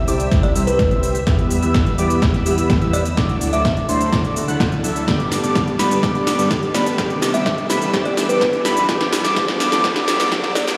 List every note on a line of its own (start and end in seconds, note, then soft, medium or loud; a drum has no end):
0.00 0.07 C3 medium
0.00 0.08 G3 medium
0.00 0.08 C4 medium
0.00 0.08 E4 medium
0.00 0.08 G4 medium
0.00 3.14 G4 medium
0.00 3.13 E5 medium
0.00 1.25 G5 medium
0.00 1.25 E6 medium
0.00 riser medium
0.07 0.29 C2 medium
0.07 0.52 C3 medium
0.07 0.53 G3 medium
0.07 0.28 G3 medium
0.07 0.28 C4 medium
0.07 0.53 C4 medium
0.07 0.28 E4 medium
0.07 0.53 E4 medium
0.07 0.53 G4 medium
0.07 0.28 C5 medium
0.07 0.28 D5 loud
0.07 0.28 D6 loud
0.07 open hi-hat medium
0.07 shaker medium
0.20 closed hi-hat medium
0.20 shaker soft
0.32 0.53 C2 medium
0.32 0.53 G3 medium
0.32 0.53 C4 medium
0.32 0.53 E4 medium
0.32 0.53 C5 medium
0.32 0.53 E5 medium
0.32 0.53 E6 medium
0.32 kick loud
0.32 snare medium
0.32 closed hi-hat medium
0.32 shaker soft
0.43 0.64 D5 medium
0.43 closed hi-hat soft
0.54 0.89 C2 medium
0.54 1.23 C3 medium
0.54 1.24 G3 medium
0.54 0.88 G3 medium
0.54 1.24 C4 medium
0.54 0.88 C4 medium
0.54 0.88 E4 medium
0.54 1.24 E4 medium
0.54 1.25 G4 medium
0.54 0.88 C5 medium
0.54 0.88 E5 medium
0.54 0.88 E6 medium
0.54 open hi-hat loud
0.54 shaker medium
0.67 1.15 B4 medium
0.67 closed hi-hat medium
0.67 shaker soft
0.79 kick loud
0.79 snare medium
0.79 closed hi-hat medium
0.79 shaker soft
0.91 1.25 C2 loud
0.91 1.16 G3 medium
0.91 1.16 C4 medium
0.91 1.16 E4 medium
0.91 1.15 C5 medium
0.91 1.15 E5 loud
0.91 1.16 E6 loud
0.91 closed hi-hat soft
1.03 open hi-hat medium
1.03 shaker medium
1.15 closed hi-hat medium
1.15 shaker soft
1.26 1.60 E2 medium
1.26 1.95 G3 medium
1.26 1.60 G3 medium
1.26 1.95 B3 medium
1.26 1.60 B3 medium
1.26 1.60 E4 medium
1.26 1.96 E4 medium
1.26 1.96 G4 medium
1.26 1.60 B4 medium
1.26 1.60 E5 medium
1.26 3.15 B5 medium
1.26 5.04 E6 medium
1.26 1.60 E6 loud
1.26 kick loud
1.26 snare medium
1.26 closed hi-hat medium
1.26 shaker soft
1.39 closed hi-hat soft
1.51 open hi-hat loud
1.51 shaker medium
1.62 1.96 E2 loud
1.62 1.96 G3 medium
1.62 1.96 B3 medium
1.62 1.96 E4 medium
1.62 1.96 B4 medium
1.62 1.96 E5 medium
1.62 1.96 E6 medium
1.62 closed hi-hat soft
1.62 shaker soft
1.74 kick loud
1.74 snare medium
1.74 closed hi-hat soft
1.74 shaker soft
1.86 closed hi-hat soft
1.98 2.20 E2 loud
1.98 2.43 G3 medium
1.98 2.19 G3 medium
1.98 2.43 B3 medium
1.98 2.19 B3 medium
1.98 2.19 E4 medium
1.98 2.43 E4 medium
1.98 2.43 G4 medium
1.98 2.19 B4 medium
1.98 2.19 D5 loud
1.98 2.19 D6 loud
1.98 open hi-hat loud
1.98 shaker medium
2.10 closed hi-hat medium
2.10 shaker soft
2.22 2.44 E2 medium
2.22 2.43 G3 medium
2.22 2.43 B3 medium
2.22 2.43 E4 medium
2.22 2.43 B4 medium
2.22 2.43 E5 medium
2.22 2.43 E6 medium
2.22 kick loud
2.22 snare medium
2.22 closed hi-hat soft
2.22 shaker soft
2.34 closed hi-hat soft
2.45 2.79 E2 loud
2.45 3.14 G3 medium
2.45 2.79 G3 medium
2.45 3.14 B3 medium
2.45 2.79 B3 medium
2.45 2.79 E4 medium
2.45 3.15 E4 medium
2.45 3.15 G4 medium
2.45 2.79 B4 medium
2.45 2.79 E5 medium
2.45 2.79 E6 medium
2.45 open hi-hat loud
2.45 shaker medium
2.58 closed hi-hat medium
2.58 shaker soft
2.70 kick loud
2.70 snare medium
2.70 closed hi-hat soft
2.70 shaker soft
2.82 3.15 E2 medium
2.82 3.06 G3 medium
2.82 3.06 B3 medium
2.82 3.06 E4 medium
2.82 3.06 B4 medium
2.82 3.06 E5 loud
2.82 3.06 E6 loud
2.82 closed hi-hat soft
2.93 3.14 D5 medium
2.93 open hi-hat loud
2.93 shaker medium
3.05 closed hi-hat medium
3.05 shaker soft
3.16 3.51 D2 loud
3.16 3.85 D3 medium
3.16 3.50 F#3 medium
3.16 3.86 A3 medium
3.16 3.50 D4 medium
3.16 3.86 D4 medium
3.16 3.50 E4 medium
3.16 3.86 E4 medium
3.16 5.06 F#4 medium
3.16 3.87 F#4 loud
3.16 3.50 A4 medium
3.16 5.06 D5 medium
3.16 3.50 D5 loud
3.16 6.94 A5 medium
3.16 3.50 D6 loud
3.16 kick loud
3.16 snare medium
3.16 closed hi-hat medium
3.16 shaker soft
3.29 closed hi-hat soft
3.41 open hi-hat loud
3.41 shaker medium
3.53 3.87 D2 loud
3.53 3.86 F#3 medium
3.53 3.86 D4 medium
3.53 3.86 E4 medium
3.53 3.86 A4 medium
3.53 3.86 D5 medium
3.53 3.61 E5 medium
3.53 3.86 D6 medium
3.53 closed hi-hat soft
3.53 shaker soft
3.65 3.73 E5 medium
3.65 kick loud
3.65 snare medium
3.65 closed hi-hat soft
3.65 shaker soft
3.77 closed hi-hat soft
3.88 4.10 D2 loud
3.88 4.33 D3 medium
3.88 4.09 F#3 loud
3.88 4.33 A3 medium
3.88 4.09 D4 medium
3.88 4.34 D4 medium
3.88 4.09 E4 medium
3.88 4.34 E4 medium
3.88 4.34 F#4 medium
3.88 4.09 A4 medium
3.88 4.09 C5 loud
3.88 4.09 C6 loud
3.88 open hi-hat medium
3.88 shaker medium
4.01 closed hi-hat soft
4.01 shaker soft
4.13 4.46 D2 loud
4.13 4.34 F#3 medium
4.13 4.34 D4 medium
4.13 4.34 E4 medium
4.13 4.34 A4 medium
4.13 4.34 D5 medium
4.13 4.34 D6 medium
4.13 kick loud
4.13 snare medium
4.13 closed hi-hat soft
4.13 shaker soft
4.25 closed hi-hat soft
4.35 5.04 D3 medium
4.35 5.05 A3 medium
4.35 5.05 D4 medium
4.35 5.05 E4 medium
4.35 5.06 F#4 medium
4.35 open hi-hat loud
4.35 shaker medium
4.48 4.82 D2 loud
4.48 4.81 F#3 medium
4.48 4.81 D4 medium
4.48 4.81 E4 medium
4.48 4.81 A4 medium
4.48 4.81 F#5 medium
4.48 4.81 F#6 medium
4.48 closed hi-hat medium
4.48 shaker soft
4.60 kick loud
4.60 snare medium
4.60 closed hi-hat soft
4.60 shaker soft
4.72 closed hi-hat soft
4.84 5.05 D2 loud
4.84 5.05 F#3 medium
4.84 5.05 D4 medium
4.84 5.05 E4 medium
4.84 5.05 A4 medium
4.84 5.05 E5 medium
4.84 5.05 E6 medium
4.84 open hi-hat loud
4.84 shaker medium
4.96 closed hi-hat medium
4.96 shaker soft
5.07 5.41 G1 loud
5.07 5.76 G2 medium
5.07 5.41 G3 medium
5.07 5.76 A3 medium
5.07 5.41 B3 medium
5.07 5.77 B3 medium
5.07 5.41 D4 medium
5.07 5.77 D4 medium
5.07 10.75 G4 medium
5.07 5.77 G4 medium
5.07 5.41 A4 medium
5.07 6.97 B4 medium
5.07 5.41 D5 medium
5.07 5.41 D6 medium
5.07 6.97 D6 medium
5.07 kick loud
5.07 snare medium
5.07 closed hi-hat soft
5.07 shaker soft
5.20 closed hi-hat soft
5.32 snare medium
5.32 open hi-hat loud
5.32 shaker medium
5.43 5.77 G1 loud
5.43 5.76 G3 medium
5.43 5.76 B3 medium
5.43 5.76 D4 medium
5.43 5.76 A4 medium
5.43 5.76 D5 medium
5.43 5.76 D6 medium
5.43 closed hi-hat soft
5.43 shaker soft
5.55 kick loud
5.55 snare medium
5.55 closed hi-hat soft
5.55 shaker soft
5.67 closed hi-hat soft
5.79 6.01 G1 medium
5.79 6.01 G2 medium
5.79 6.00 G3 medium
5.79 6.01 A3 medium
5.79 6.00 B3 medium
5.79 6.01 B3 medium
5.79 6.00 D4 medium
5.79 6.01 D4 medium
5.79 6.02 G4 medium
5.79 6.00 A4 medium
5.79 5.99 B4 loud
5.79 6.00 B5 medium
5.79 snare medium
5.79 open hi-hat medium
5.79 shaker medium
5.91 closed hi-hat medium
5.91 shaker soft
6.02 6.36 G1 medium
6.02 6.71 G2 medium
6.02 6.36 G3 medium
6.02 6.71 A3 medium
6.02 6.72 B3 medium
6.02 6.36 B3 medium
6.02 6.36 D4 medium
6.02 6.72 D4 medium
6.02 6.72 G4 medium
6.02 6.36 A4 medium
6.02 6.36 D5 medium
6.02 6.36 D6 medium
6.02 kick loud
6.02 snare medium
6.02 closed hi-hat soft
6.02 shaker soft
6.15 closed hi-hat soft
6.27 snare medium
6.27 open hi-hat loud
6.27 shaker medium
6.39 6.72 G2 loud
6.39 6.72 G3 medium
6.39 6.72 B3 medium
6.39 6.72 D4 medium
6.39 6.72 A4 medium
6.39 6.72 D5 medium
6.39 6.72 D6 medium
6.39 closed hi-hat medium
6.39 shaker soft
6.51 kick loud
6.51 snare medium
6.51 closed hi-hat soft
6.51 shaker soft
6.63 closed hi-hat soft
6.74 6.96 G2 medium
6.74 6.96 G2 loud
6.74 6.95 G3 medium
6.74 6.96 A3 medium
6.74 6.96 B3 medium
6.74 6.95 B3 medium
6.74 6.95 D4 medium
6.74 6.97 D4 medium
6.74 6.97 G4 medium
6.74 6.95 A4 medium
6.74 6.95 B4 loud
6.74 6.95 D5 loud
6.74 6.95 B5 medium
6.74 snare medium
6.74 open hi-hat medium
6.74 shaker medium
6.86 closed hi-hat medium
6.86 shaker soft
6.97 7.32 C2 loud
6.97 7.66 G2 medium
6.97 7.31 G3 medium
6.97 7.67 A3 medium
6.97 7.67 B3 medium
6.97 7.31 B3 medium
6.97 7.31 D4 medium
6.97 7.67 D4 medium
6.97 7.68 G4 medium
6.97 7.31 A4 medium
6.97 7.31 D5 medium
6.97 10.75 E5 medium
6.97 8.87 G5 medium
6.97 7.31 D6 loud
6.97 8.87 E6 medium
6.97 kick loud
6.97 snare medium
6.97 closed hi-hat medium
6.97 shaker soft
7.10 closed hi-hat soft
7.22 snare medium
7.22 open hi-hat loud
7.22 shaker medium
7.34 7.67 C2 loud
7.34 7.67 G3 medium
7.34 7.67 B3 medium
7.34 7.67 D4 medium
7.34 7.67 A4 medium
7.34 7.67 D5 medium
7.34 7.42 E5 medium
7.34 7.67 D6 medium
7.34 closed hi-hat soft
7.34 shaker soft
7.46 7.54 E5 medium
7.46 kick loud
7.46 snare medium
7.46 closed hi-hat soft
7.46 shaker soft
7.58 closed hi-hat soft
7.69 7.91 C2 loud
7.69 7.91 G2 medium
7.69 7.90 G3 medium
7.69 7.92 A3 medium
7.69 7.90 B3 medium
7.69 7.92 B3 medium
7.69 7.90 D4 medium
7.69 7.92 D4 medium
7.69 7.92 G4 medium
7.69 7.90 A4 medium
7.69 7.90 B4 loud
7.69 7.90 B5 loud
7.69 snare medium
7.69 open hi-hat medium
7.69 shaker medium
7.82 closed hi-hat medium
7.82 shaker soft
7.92 8.27 C2 loud
7.92 8.62 G2 medium
7.92 8.26 G3 medium
7.92 8.62 A3 medium
7.92 8.62 B3 medium
7.92 8.26 B3 medium
7.92 8.26 D4 medium
7.92 8.62 D4 medium
7.92 8.63 G4 medium
7.92 8.26 A4 medium
7.92 8.26 D5 loud
7.92 8.27 D6 medium
7.92 kick loud
7.92 snare medium
7.92 closed hi-hat medium
7.92 shaker soft
8.05 8.26 D5 medium
8.05 closed hi-hat soft
8.17 snare medium
8.17 open hi-hat loud
8.17 shaker medium
8.29 8.63 C2 loud
8.29 8.62 G3 medium
8.29 8.62 B3 medium
8.29 8.62 D4 medium
8.29 8.62 A4 medium
8.29 8.77 B4 medium
8.29 8.62 D5 medium
8.29 8.62 D6 medium
8.29 closed hi-hat medium
8.29 shaker soft
8.41 kick loud
8.41 snare medium
8.41 closed hi-hat medium
8.41 shaker soft
8.53 closed hi-hat soft
8.65 8.86 E2 loud
8.65 8.86 G2 medium
8.65 8.85 G3 loud
8.65 8.87 A3 medium
8.65 8.85 B3 medium
8.65 8.87 B3 medium
8.65 8.85 D4 medium
8.65 8.87 D4 medium
8.65 8.87 G4 medium
8.65 8.85 A4 medium
8.65 8.85 B4 loud
8.65 8.85 B5 loud
8.65 snare medium
8.65 open hi-hat medium
8.65 shaker medium
8.77 closed hi-hat medium
8.77 shaker soft
8.88 9.22 E2 medium
8.88 9.34 G2 medium
8.88 9.22 G3 medium
8.88 9.34 A3 medium
8.88 9.22 B3 medium
8.88 9.35 B3 medium
8.88 9.22 D4 medium
8.88 9.35 D4 medium
8.88 9.35 G4 medium
8.88 9.22 A4 medium
8.88 9.22 D5 loud
8.88 10.77 B5 medium
8.88 9.22 D6 loud
8.88 10.77 E6 medium
8.88 kick loud
8.88 snare medium
8.88 closed hi-hat medium
8.88 shaker soft
9.01 snare medium
9.01 closed hi-hat soft
9.13 snare loud
9.13 open hi-hat loud
9.13 shaker medium
9.24 9.34 E2 loud
9.24 9.35 G3 medium
9.24 9.35 B3 medium
9.24 9.35 D4 medium
9.24 9.35 A4 medium
9.24 9.35 D5 medium
9.24 9.35 D6 medium
9.24 snare medium
9.24 closed hi-hat medium
9.24 shaker soft
9.35 9.70 E2 loud
9.35 9.81 G2 medium
9.35 9.69 G3 medium
9.35 9.82 A3 medium
9.35 9.82 B3 medium
9.35 9.69 B3 medium
9.35 9.69 D4 medium
9.35 9.82 D4 medium
9.35 9.83 G4 medium
9.35 9.69 A4 medium
9.35 9.69 D5 loud
9.35 kick loud
9.35 snare loud
9.35 closed hi-hat medium
9.35 shaker soft
9.48 snare medium
9.48 closed hi-hat soft
9.60 snare loud
9.60 open hi-hat medium
9.60 shaker medium
9.72 9.82 E2 loud
9.72 9.82 G3 medium
9.72 9.82 B3 medium
9.72 9.82 D4 medium
9.72 9.82 A4 medium
9.72 9.82 D5 medium
9.72 9.82 D6 loud
9.72 snare medium
9.72 closed hi-hat medium
9.72 shaker soft
9.83 10.17 E2 loud
9.83 10.29 G2 medium
9.83 10.17 G3 medium
9.83 10.29 A3 medium
9.83 10.17 B3 medium
9.83 10.30 B3 medium
9.83 10.17 D4 medium
9.83 10.30 D4 medium
9.83 10.30 G4 medium
9.83 10.17 A4 medium
9.83 10.17 D5 loud
9.83 10.17 D6 loud
9.83 kick loud
9.83 snare loud
9.83 closed hi-hat medium
9.83 shaker soft
9.96 snare medium
9.96 closed hi-hat soft
10.08 snare loud
10.08 open hi-hat loud
10.08 shaker medium
10.20 10.29 E2 loud
10.20 10.30 G3 medium
10.20 10.30 B3 medium
10.20 10.30 D4 medium
10.20 10.30 A4 medium
10.20 10.30 D5 loud
10.20 10.30 D6 medium
10.20 snare medium
10.20 closed hi-hat medium
10.20 shaker soft
10.31 10.65 E2 loud
10.31 10.77 G2 medium
10.31 10.64 G3 medium
10.31 10.77 A3 medium
10.31 10.64 B3 medium
10.31 10.77 B3 medium
10.31 10.64 D4 medium
10.31 10.77 D4 medium
10.31 10.77 G4 loud
10.31 10.64 A4 medium
10.31 10.64 D5 loud
10.31 10.65 D6 loud
10.31 kick loud
10.31 snare loud
10.31 closed hi-hat medium
10.31 shaker soft
10.44 snare medium
10.44 closed hi-hat soft
10.55 10.76 D5 medium
10.55 snare loud
10.55 open hi-hat medium
10.55 shaker medium
10.67 10.77 D2 loud
10.67 10.77 G3 medium
10.67 10.77 B3 medium
10.67 10.77 D4 medium
10.67 10.77 A4 medium
10.67 10.77 D5 loud
10.67 10.77 D6 medium
10.67 snare medium
10.67 closed hi-hat medium
10.67 shaker soft